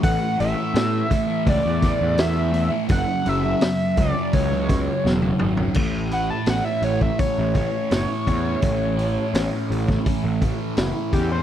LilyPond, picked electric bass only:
\new Staff \with { instrumentName = "Picked electric bass" } { \clef bass \time 4/4 \key a \major \tempo 4 = 84 a,,16 r16 a,,16 r16 a,8 r8 cis,16 e,8 e,4~ e,16 | fis,,16 r16 fis,,8 r8 cis,16 r16 cis,4 e,,8 gis,,8 | a,,4 a,,16 r16 a,,8 r16 a,,8 r16 fis,,16 r16 e,8 | a,,4 a,,16 r16 a,,8 r16 a,,8 r16 fis,,16 r16 e,8 | }